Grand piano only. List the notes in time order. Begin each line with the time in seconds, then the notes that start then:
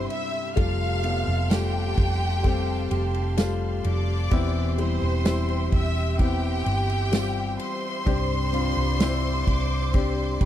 Already playing: G3 C4 E4
0.56 C3 G3 A3 F4
1.03 G3 A3 B3
1.50 G3 A3 F4
2.43 G3 A3 C4
3.37 G3 A3 F4
4.31 E3 B3 C4 E4
4.78 G3 C4 E4
5.25 G3 C4 E4
6.18 B3 C4 E4
7.12 G3 C4 F4
7.19 G4
8.06 G2 C4 D4 G4
8.53 C4 D4 F4
8.99 C4 D4 E4
9.93 C4 D4 G4